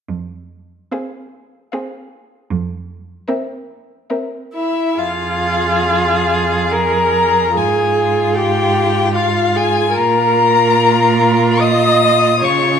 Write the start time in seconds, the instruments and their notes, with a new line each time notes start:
0.08 cello F2
0.92 viola C4, violin G#4 F5
1.72 viola C4, violin G#4 F5
2.50 cello F2
3.28 viola C4, violin A#4 E5
4.10 viola C4, violin A#4 E5
4.54 viola E4, violin E5
4.98 cello F2, viola F4, violin G#4 F5
6.71 viola A#4, violin A#5
7.55 cello G#2, violin F4 G#5, viola G#4
8.35 viola G4, violin G5
9.15 violin F4 F5, viola F4
9.55 viola G#4, violin G#5
9.95 cello A#2, violin F4 A#5, viola A#4
11.60 viola D#5, violin D#6
12.41 cello C#3, violin F4 C#6, viola C#5